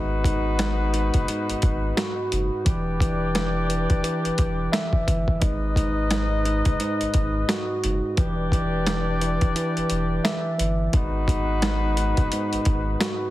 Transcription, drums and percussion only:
0.24 kick loud
0.24 closed hi-hat medium
0.59 snare loud
0.59 closed hi-hat loud
0.94 closed hi-hat medium
1.14 kick medium
1.14 closed hi-hat medium
1.28 closed hi-hat loud
1.50 closed hi-hat medium
1.62 kick medium
1.62 closed hi-hat medium
1.97 snare loud
1.97 closed hi-hat medium
2.32 closed hi-hat medium
2.66 kick loud
2.66 closed hi-hat medium
3.00 kick loud
3.00 closed hi-hat medium
3.35 snare loud
3.35 snare medium
3.35 closed hi-hat loud
3.70 closed hi-hat medium
3.90 kick medium
3.90 closed hi-hat medium
4.04 closed hi-hat loud
4.25 closed hi-hat medium
4.38 kick medium
4.38 closed hi-hat medium
4.73 snare loud
4.73 closed hi-hat medium
4.93 kick loud
5.08 kick medium
5.08 closed hi-hat medium
5.28 kick loud
5.42 kick loud
5.42 closed hi-hat medium
5.76 kick loud
5.76 closed hi-hat medium
6.11 snare loud
6.11 snare medium
6.11 closed hi-hat loud
6.45 closed hi-hat medium
6.65 kick medium
6.65 closed hi-hat medium
6.80 closed hi-hat loud
7.01 closed hi-hat medium
7.14 kick medium
7.14 closed hi-hat medium
7.49 snare loud
7.49 closed hi-hat medium
7.84 closed hi-hat medium
8.17 kick loud
8.17 closed hi-hat medium
8.52 kick loud
8.52 closed hi-hat medium
8.87 snare loud
8.87 snare medium
8.87 closed hi-hat loud
9.21 closed hi-hat medium
9.41 kick medium
9.41 closed hi-hat medium
9.56 closed hi-hat loud
9.77 closed hi-hat medium
9.90 closed hi-hat medium
10.25 snare loud
10.25 closed hi-hat medium
10.59 closed hi-hat medium
10.93 kick loud
10.93 closed hi-hat medium
11.28 kick loud
11.28 closed hi-hat medium
11.62 snare loud
11.62 snare medium
11.62 closed hi-hat loud
11.97 closed hi-hat medium
12.17 kick medium
12.17 closed hi-hat medium
12.32 closed hi-hat loud
12.53 closed hi-hat soft
12.65 kick medium
12.65 closed hi-hat medium
13.01 snare loud
13.01 closed hi-hat medium

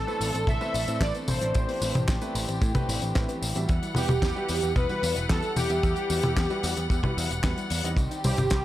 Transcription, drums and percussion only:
0.08 tambourine soft
0.21 open hi-hat loud
0.21 tambourine medium
0.34 closed hi-hat medium
0.34 tambourine soft
0.47 kick loud
0.47 closed hi-hat medium
0.47 high tom medium
0.47 tambourine soft
0.61 tambourine soft
0.74 open hi-hat loud
0.74 tambourine medium
0.88 closed hi-hat medium
0.88 tambourine soft
1.01 kick loud
1.01 snare loud
1.01 clap loud
1.01 closed hi-hat medium
1.01 tambourine soft
1.15 closed hi-hat medium
1.15 tambourine soft
1.28 open hi-hat loud
1.28 high tom medium
1.28 tambourine medium
1.42 closed hi-hat medium
1.42 tambourine soft
1.54 kick loud
1.54 closed hi-hat medium
1.54 tambourine soft
1.69 open hi-hat medium
1.69 tambourine soft
1.82 open hi-hat loud
1.82 tambourine medium
1.95 closed hi-hat medium
1.95 high tom medium
1.95 tambourine soft
2.08 kick loud
2.08 snare loud
2.08 clap loud
2.08 closed hi-hat medium
2.08 tambourine soft
2.21 closed hi-hat medium
2.21 tambourine soft
2.35 open hi-hat loud
2.35 tambourine medium
2.48 closed hi-hat medium
2.48 tambourine soft
2.62 kick loud
2.62 closed hi-hat medium
2.62 tambourine soft
2.75 kick medium
2.75 closed hi-hat medium
2.75 high tom medium
2.75 tambourine soft
2.89 open hi-hat loud
2.89 tambourine medium
3.02 closed hi-hat medium
3.02 tambourine soft
3.15 kick loud
3.15 snare loud
3.15 clap loud
3.15 closed hi-hat medium
3.15 tambourine soft
3.29 closed hi-hat medium
3.29 tambourine soft
3.43 open hi-hat loud
3.43 tambourine medium
3.55 closed hi-hat medium
3.55 tambourine soft
3.69 kick loud
3.69 closed hi-hat medium
3.69 tambourine soft
3.82 closed hi-hat soft
3.82 tambourine soft
3.95 open hi-hat loud
3.95 high tom medium
3.95 tambourine medium
4.09 high tom medium
4.09 tambourine soft
4.22 kick loud
4.22 snare loud
4.22 clap medium
4.22 closed hi-hat medium
4.22 tambourine soft
4.36 tambourine soft
4.48 open hi-hat loud
4.48 tambourine medium
4.62 closed hi-hat medium
4.62 tambourine soft
4.76 kick loud
4.76 closed hi-hat medium
4.76 high tom medium
4.76 tambourine soft
4.89 tambourine soft
5.03 open hi-hat loud
5.03 tambourine medium
5.16 closed hi-hat medium
5.16 tambourine soft
5.30 kick loud
5.30 snare loud
5.30 clap loud
5.30 closed hi-hat medium
5.30 tambourine soft
5.42 closed hi-hat soft
5.42 tambourine soft
5.56 open hi-hat loud
5.56 high tom medium
5.56 tambourine medium
5.70 closed hi-hat medium
5.70 tambourine soft
5.83 kick loud
5.83 closed hi-hat medium
5.83 tambourine soft
5.96 closed hi-hat medium
5.96 tambourine soft
6.10 open hi-hat loud
6.10 tambourine medium
6.23 closed hi-hat medium
6.23 high tom medium
6.23 tambourine soft
6.37 kick loud
6.37 snare loud
6.37 clap loud
6.37 closed hi-hat medium
6.37 tambourine soft
6.50 tambourine soft
6.63 open hi-hat loud
6.63 tambourine medium
6.77 closed hi-hat medium
6.77 tambourine soft
6.90 kick loud
6.90 closed hi-hat medium
6.90 tambourine soft
7.03 kick medium
7.03 high tom medium
7.03 tambourine soft
7.18 open hi-hat loud
7.18 tambourine medium
7.31 closed hi-hat medium
7.31 tambourine soft
7.44 kick loud
7.44 snare loud
7.44 clap loud
7.44 closed hi-hat medium
7.44 tambourine soft
7.58 closed hi-hat medium
7.58 tambourine soft
7.70 open hi-hat loud
7.70 tambourine medium
7.84 closed hi-hat medium
7.84 tambourine soft
7.97 kick loud
7.97 closed hi-hat medium
7.97 tambourine soft
8.11 closed hi-hat medium
8.11 tambourine soft
8.24 open hi-hat loud
8.24 high tom medium
8.24 tambourine medium
8.38 closed hi-hat medium
8.38 high tom medium
8.38 tambourine soft
8.50 kick loud
8.50 snare loud
8.50 clap loud
8.50 closed hi-hat medium
8.50 tambourine soft

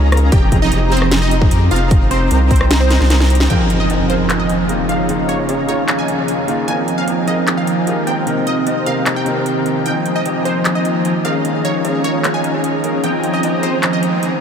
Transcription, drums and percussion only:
0.12 cross-stick medium
0.12 closed hi-hat soft
0.17 closed hi-hat medium
0.32 kick loud
0.32 closed hi-hat medium
0.52 kick medium
0.52 closed hi-hat medium
0.72 closed hi-hat medium
0.92 closed hi-hat soft
0.97 closed hi-hat medium
1.02 cross-stick medium
1.11 snare loud
1.11 closed hi-hat medium
1.31 closed hi-hat medium
1.42 kick medium
1.51 closed hi-hat medium
1.71 closed hi-hat medium
1.76 closed hi-hat medium
1.91 kick loud
1.91 closed hi-hat medium
2.11 closed hi-hat medium
2.31 closed hi-hat medium
2.51 kick medium
2.51 closed hi-hat soft
2.56 closed hi-hat medium
2.61 cross-stick medium
2.71 snare loud
2.71 closed hi-hat medium
2.90 snare medium
2.90 closed hi-hat medium
3.01 snare medium
3.10 snare medium
3.10 closed hi-hat medium
3.20 snare medium
3.30 closed hi-hat medium
3.35 closed hi-hat medium
3.40 snare medium
3.50 closed hi-hat medium
3.70 closed hi-hat medium
3.90 closed hi-hat medium
4.10 closed hi-hat medium
4.30 clap medium
4.30 closed hi-hat medium
4.49 closed hi-hat medium
4.69 closed hi-hat medium
4.89 closed hi-hat medium
5.09 closed hi-hat medium
5.29 closed hi-hat medium
5.49 closed hi-hat medium
5.69 closed hi-hat medium
5.88 clap medium
5.88 closed hi-hat medium
6.08 closed hi-hat medium
6.28 closed hi-hat medium
6.48 closed hi-hat medium
6.68 closed hi-hat medium
6.88 closed hi-hat medium
7.08 closed hi-hat medium
7.28 closed hi-hat medium
7.47 clap medium
7.47 closed hi-hat medium
7.67 closed hi-hat medium
7.87 closed hi-hat medium
8.07 closed hi-hat medium
8.27 closed hi-hat medium
8.47 closed hi-hat medium
8.67 closed hi-hat medium
8.86 closed hi-hat medium
9.06 clap medium
9.06 closed hi-hat medium
9.26 closed hi-hat medium
9.46 closed hi-hat medium
9.66 closed hi-hat medium
9.86 closed hi-hat medium
10.06 closed hi-hat medium
10.26 closed hi-hat medium
10.45 closed hi-hat medium
10.65 clap medium
10.65 closed hi-hat medium
10.85 closed hi-hat medium
11.05 closed hi-hat medium
11.25 closed hi-hat medium
11.45 closed hi-hat medium
11.65 closed hi-hat medium
11.85 closed hi-hat medium
12.04 closed hi-hat medium
12.24 clap medium
12.24 closed hi-hat medium
12.44 closed hi-hat medium
12.64 closed hi-hat medium
12.84 closed hi-hat medium
13.04 closed hi-hat medium
13.23 closed hi-hat medium
13.43 closed hi-hat medium
13.63 closed hi-hat medium
13.83 clap medium
13.83 closed hi-hat medium
14.03 closed hi-hat medium
14.23 closed hi-hat medium

